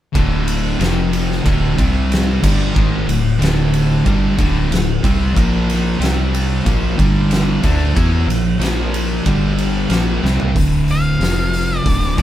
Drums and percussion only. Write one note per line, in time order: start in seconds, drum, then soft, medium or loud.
0.15 kick loud
0.15 ride loud
0.48 ride medium
0.81 snare loud
0.81 ride loud
1.13 ride medium
1.32 snare soft
1.46 kick loud
1.46 ride loud
1.78 kick loud
1.78 ride medium
2.12 snare loud
2.12 ride loud
2.44 kick loud
2.44 crash loud
2.76 kick loud
3.09 snare soft
3.09 ride medium
3.42 snare loud
3.42 ride loud
3.74 ride medium
4.06 kick loud
4.06 ride medium
4.39 kick loud
4.39 ride medium
4.72 snare loud
4.72 ride loud
5.04 kick loud
5.04 ride medium
5.37 kick loud
5.37 ride loud
5.70 snare soft
5.70 ride medium
6.02 snare loud
6.02 ride loud
6.34 ride medium
6.66 kick loud
6.66 ride loud
6.99 kick loud
6.99 ride medium
7.31 snare loud
7.31 ride loud
7.63 kick loud
7.63 ride medium
7.97 kick loud
7.97 ride loud
8.30 snare soft
8.30 ride medium
8.61 snare loud
8.61 ride loud
8.94 ride medium
9.26 kick loud
9.26 ride loud
9.58 ride medium
9.90 snare loud
9.90 ride loud
10.25 snare medium
10.40 floor tom loud
10.56 kick loud
10.56 open hi-hat medium
10.88 open hi-hat medium
11.21 snare loud
11.21 open hi-hat medium
11.53 open hi-hat medium
11.86 kick loud
11.86 open hi-hat medium
12.18 kick loud
12.18 open hi-hat medium